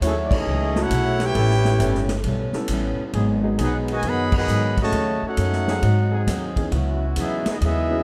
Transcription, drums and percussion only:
0.01 kick, hi-hat pedal, ride
0.31 kick, crash
0.76 snare
0.91 kick, hi-hat pedal, ride
1.20 snare, ride
1.35 kick, ride
1.51 snare
1.65 snare
1.80 kick, hi-hat pedal, ride
1.95 snare
2.09 snare, ride
2.24 kick, ride
2.53 snare
2.68 kick, hi-hat pedal, ride
3.13 kick, ride
3.58 kick, hi-hat pedal, ride
3.88 ride
4.03 kick, ride
4.32 kick, crash
4.48 hi-hat pedal
4.77 kick, ride
4.92 kick, ride
5.37 kick, hi-hat pedal, ride
5.53 snare
5.68 snare
5.82 kick, ride
6.27 kick, snare, hi-hat pedal, ride
6.56 kick, ride
6.71 kick, ride
7.16 kick, hi-hat pedal, ride
7.46 snare, ride
7.61 kick, ride

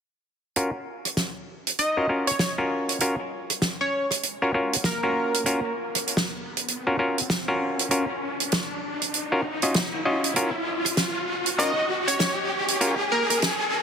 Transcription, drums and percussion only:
0.56 closed hi-hat
1.05 cross-stick, closed hi-hat
1.17 snare, closed hi-hat
1.67 closed hi-hat
1.79 closed hi-hat
2.27 closed hi-hat
2.39 snare, closed hi-hat
2.89 closed hi-hat
3.00 closed hi-hat
3.50 cross-stick, closed hi-hat
3.62 snare, closed hi-hat
4.11 cross-stick, closed hi-hat
4.23 closed hi-hat
4.73 closed hi-hat
4.84 snare, closed hi-hat
5.34 closed hi-hat
5.46 closed hi-hat
5.95 cross-stick, closed hi-hat
6.07 closed hi-hat
6.17 snare
6.57 closed hi-hat
6.68 closed hi-hat
7.18 closed hi-hat
7.30 snare, closed hi-hat
7.79 closed hi-hat
7.91 closed hi-hat
8.40 closed hi-hat
8.52 snare, closed hi-hat
9.02 cross-stick, closed hi-hat
9.14 closed hi-hat
9.62 closed hi-hat
9.74 snare, closed hi-hat
10.24 closed hi-hat
10.36 closed hi-hat
10.85 cross-stick, closed hi-hat
10.97 snare, closed hi-hat
11.46 closed hi-hat
11.59 closed hi-hat
12.08 closed hi-hat
12.20 snare, closed hi-hat
12.68 closed hi-hat
12.81 closed hi-hat
13.30 cross-stick, closed hi-hat
13.42 snare, closed hi-hat

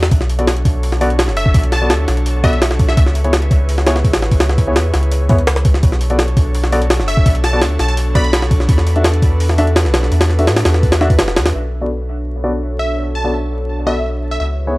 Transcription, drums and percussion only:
0.03 snare, open hi-hat
0.11 kick, open hi-hat
0.21 snare
0.30 open hi-hat
0.39 closed hi-hat
0.47 snare, open hi-hat
0.57 closed hi-hat
0.65 kick, open hi-hat
0.83 open hi-hat
0.92 snare
1.01 open hi-hat
1.10 closed hi-hat
1.19 snare, open hi-hat
1.28 snare
1.37 open hi-hat
1.46 kick
1.54 kick, open hi-hat
1.64 closed hi-hat
1.72 snare, open hi-hat
1.90 snare, open hi-hat
2.08 snare, open hi-hat
2.17 closed hi-hat
2.26 open hi-hat
2.44 kick, open hi-hat
2.53 closed hi-hat
2.62 snare, open hi-hat
2.71 snare
2.79 kick, open hi-hat
2.88 snare
2.97 kick, open hi-hat
3.06 snare
3.15 open hi-hat
3.24 closed hi-hat
3.33 snare, open hi-hat
3.42 closed hi-hat
3.51 kick, open hi-hat
3.69 open hi-hat
3.78 snare
3.87 snare, open hi-hat
3.96 snare
4.04 kick, open hi-hat
4.13 snare, open hi-hat
4.22 snare
4.31 kick, open hi-hat
4.40 snare, open hi-hat
4.49 snare
4.58 kick, open hi-hat
4.76 snare, open hi-hat
4.94 snare, open hi-hat
5.03 closed hi-hat
5.12 open hi-hat
5.29 kick, open hi-hat
5.38 closed hi-hat
5.47 snare, open hi-hat
5.56 snare
5.65 kick, open hi-hat
5.74 snare
5.83 kick, open hi-hat
5.92 snare
6.01 open hi-hat
6.10 closed hi-hat
6.19 snare, open hi-hat
6.28 closed hi-hat
6.37 kick, open hi-hat
6.54 open hi-hat
6.64 snare
6.72 open hi-hat
6.82 closed hi-hat
6.90 snare, open hi-hat
7.00 snare
7.08 open hi-hat
7.17 kick
7.26 kick, open hi-hat
7.35 closed hi-hat
7.44 snare, open hi-hat
7.62 snare, open hi-hat
7.79 snare, open hi-hat
7.89 closed hi-hat
7.97 open hi-hat
8.15 kick, open hi-hat
8.24 closed hi-hat
8.33 snare, open hi-hat
8.42 snare
8.51 kick, open hi-hat
8.60 snare
8.69 kick, open hi-hat
8.78 snare
8.87 open hi-hat
8.96 closed hi-hat
9.04 snare, open hi-hat
9.14 closed hi-hat
9.22 kick, open hi-hat
9.40 open hi-hat
9.49 snare
9.58 open hi-hat
9.67 closed hi-hat
9.76 snare, open hi-hat
9.85 snare
9.94 snare, open hi-hat
10.03 snare
10.12 open hi-hat
10.21 snare, open hi-hat
10.30 snare
10.39 open hi-hat
10.47 snare, open hi-hat
10.56 snare, open hi-hat
10.65 snare, open hi-hat
10.74 snare
10.83 kick, open hi-hat
10.92 snare, open hi-hat
11.01 snare
11.10 kick, open hi-hat
11.19 snare, open hi-hat
11.28 snare
11.36 snare, open hi-hat
11.46 snare, open hi-hat

